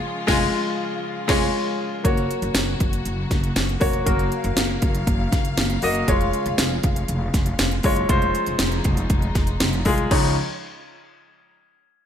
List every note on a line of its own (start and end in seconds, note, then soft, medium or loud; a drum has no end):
0.00 2.01 C#3 medium
0.00 2.01 F3 medium
0.00 0.27 G#3 medium
0.00 2.01 G#3 medium
0.00 0.27 F4 medium
0.00 2.01 F4 medium
0.00 1.29 C#5 loud
0.27 0.45 F1 medium
0.27 0.45 G#3 loud
0.27 0.45 F4 loud
0.27 0.45 G#4 medium
0.27 0.45 G#5 medium
0.27 kick loud
0.27 snare loud
0.27 crash medium
1.28 1.46 F1 medium
1.28 1.45 G#3 loud
1.28 1.46 F4 medium
1.28 1.46 G#4 medium
1.28 1.46 C#5 medium
1.28 1.46 G#5 medium
1.28 kick loud
1.28 snare loud
1.28 crash medium
2.04 2.25 F#1 loud
2.04 10.07 C#3 medium
2.04 6.04 F#3 medium
2.04 2.94 A#3 medium
2.04 6.04 A#3 medium
2.04 2.94 F#4 medium
2.04 4.04 F#4 medium
2.04 2.95 C#5 medium
2.04 kick loud
2.04 closed hi-hat medium
2.17 closed hi-hat soft
2.31 closed hi-hat medium
2.42 2.53 F#1 medium
2.42 closed hi-hat soft
2.55 2.76 F#1 medium
2.55 snare loud
2.55 closed hi-hat medium
2.80 3.01 F#1 medium
2.80 kick medium
2.80 closed hi-hat medium
2.93 closed hi-hat medium
3.05 3.26 F#1 medium
3.05 closed hi-hat medium
3.31 3.51 F#1 medium
3.31 kick medium
3.31 snare soft
3.31 closed hi-hat medium
3.44 closed hi-hat soft
3.56 3.77 F#1 medium
3.56 snare medium
3.56 closed hi-hat medium
3.69 closed hi-hat soft
3.80 4.02 F1 medium
3.80 4.03 A#3 medium
3.80 4.03 F#4 medium
3.80 4.04 C#5 medium
3.80 kick medium
3.80 open hi-hat medium
3.93 closed hi-hat soft
4.05 4.27 F#1 loud
4.05 4.96 A#3 medium
4.05 4.96 F#4 medium
4.05 4.96 A#4 medium
4.05 8.05 F5 medium
4.05 kick medium
4.05 closed hi-hat medium
4.19 closed hi-hat soft
4.32 closed hi-hat medium
4.44 4.55 F#1 loud
4.44 closed hi-hat soft
4.57 4.78 F#1 medium
4.57 snare loud
4.57 closed hi-hat medium
4.82 5.03 F#1 medium
4.82 kick medium
4.82 closed hi-hat medium
4.95 closed hi-hat medium
5.07 5.28 F#1 medium
5.07 kick medium
5.07 closed hi-hat medium
5.32 5.53 F#1 medium
5.32 kick medium
5.32 snare soft
5.32 closed hi-hat medium
5.45 closed hi-hat soft
5.57 5.78 F#1 loud
5.57 snare loud
5.57 closed hi-hat medium
5.70 closed hi-hat soft
5.82 6.03 F#1 medium
5.82 6.05 A#3 medium
5.82 6.05 F#4 medium
5.82 6.06 D#5 medium
5.82 open hi-hat medium
5.95 closed hi-hat soft
6.08 6.29 F1 medium
6.08 10.08 F3 medium
6.08 6.98 G#3 medium
6.08 10.08 G#3 medium
6.08 6.98 F4 medium
6.08 6.98 C#5 medium
6.08 kick loud
6.08 closed hi-hat medium
6.21 closed hi-hat soft
6.33 closed hi-hat medium
6.46 6.56 F1 loud
6.46 closed hi-hat medium
6.58 6.79 F1 medium
6.58 snare loud
6.58 closed hi-hat loud
6.83 7.04 F1 medium
6.83 kick medium
6.83 closed hi-hat medium
6.96 closed hi-hat medium
7.08 7.29 F1 medium
7.08 closed hi-hat medium
7.34 7.55 F1 medium
7.34 kick medium
7.34 snare soft
7.34 closed hi-hat medium
7.46 closed hi-hat soft
7.59 7.80 F1 medium
7.59 snare loud
7.59 closed hi-hat medium
7.71 closed hi-hat soft
7.83 8.05 F#1 medium
7.83 8.07 G#3 medium
7.83 8.07 F4 medium
7.83 8.07 C#5 medium
7.83 kick medium
7.83 open hi-hat medium
7.96 closed hi-hat soft
8.09 8.30 F1 loud
8.09 8.99 G#3 medium
8.09 10.09 D#4 medium
8.09 8.99 F4 medium
8.09 9.00 C5 medium
8.09 kick loud
8.09 closed hi-hat loud
8.22 closed hi-hat soft
8.35 closed hi-hat medium
8.46 8.58 F1 medium
8.46 closed hi-hat medium
8.59 8.80 F1 loud
8.59 snare loud
8.59 closed hi-hat loud
8.72 closed hi-hat soft
8.84 9.06 F1 loud
8.84 kick medium
8.84 closed hi-hat medium
8.97 closed hi-hat medium
9.10 9.31 F1 medium
9.10 kick loud
9.10 closed hi-hat medium
9.22 closed hi-hat soft
9.35 9.56 F1 medium
9.35 kick medium
9.35 snare soft
9.35 closed hi-hat medium
9.47 closed hi-hat soft
9.60 9.81 F1 loud
9.60 snare loud
9.60 closed hi-hat medium
9.73 closed hi-hat soft
9.85 10.07 C2 medium
9.85 10.08 G#3 medium
9.85 10.08 F4 medium
9.85 10.09 G#4 medium
9.85 kick medium
9.85 open hi-hat medium
9.98 closed hi-hat soft
10.11 10.35 C#2 medium
10.11 10.35 C#3 medium
10.11 10.35 F3 medium
10.11 10.35 G#3 medium
10.11 10.35 D#4 medium
10.11 10.35 C#5 medium
10.11 kick loud
10.11 crash medium